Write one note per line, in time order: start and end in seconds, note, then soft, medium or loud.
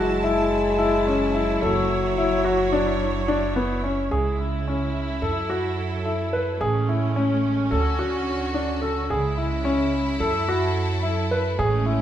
0.00 1.59 F#1 medium
0.00 4.09 F#3 medium
0.00 1.65 G#3 loud
0.00 4.09 E4 medium
0.00 0.21 F#4 medium
0.00 1.59 A5 medium
0.24 0.72 E4 medium
0.79 1.03 E4 medium
1.07 1.31 C#4 medium
1.35 1.59 E4 medium
1.62 4.08 F#1 medium
1.62 3.84 F#3 loud
1.62 2.11 A4 medium
1.62 4.09 C#5 medium
2.18 2.42 E4 medium
2.45 2.69 F#4 medium
2.73 3.21 D4 medium
3.28 3.53 D4 medium
3.56 3.80 B3 medium
3.84 4.08 C#4 medium
4.11 5.20 C#2 medium
4.11 5.22 C#3 medium
4.11 5.22 G#3 medium
4.11 6.59 E4 medium
4.11 4.36 G#4 medium
4.39 4.64 E4 medium
4.68 5.16 C#4 medium
5.22 6.58 F#2 medium
5.22 6.60 F#3 medium
5.22 5.46 A4 medium
5.22 6.60 A4 medium
5.50 5.98 F#4 medium
6.05 6.30 E4 medium
6.33 6.57 B4 medium
6.61 7.70 A1 medium
6.61 7.71 G#3 medium
6.61 7.71 A3 medium
6.61 9.08 C#4 medium
6.61 6.85 G#4 medium
6.89 7.13 E4 medium
7.16 7.65 C#4 medium
7.71 9.08 D2 medium
7.71 9.09 D3 medium
7.71 9.09 F#4 medium
7.71 7.96 A4 medium
7.99 8.48 F#4 medium
8.54 8.79 D4 medium
8.82 9.06 A4 medium
9.10 10.19 C#2 medium
9.10 10.20 C#3 medium
9.10 10.20 G#3 medium
9.10 11.58 E4 medium
9.10 9.35 G#4 medium
9.38 9.62 E4 medium
9.65 10.14 C#4 medium
10.20 11.57 F#2 medium
10.20 11.59 F#3 medium
10.20 10.45 A4 medium
10.20 11.59 A4 medium
10.48 10.97 F#4 medium
11.03 11.28 E4 medium
11.31 11.56 B4 medium
11.59 12.02 A1 medium
11.59 12.02 G#3 medium
11.59 12.02 A3 medium
11.59 12.02 C#4 medium
11.59 11.84 G#4 medium
11.86 12.02 E4 medium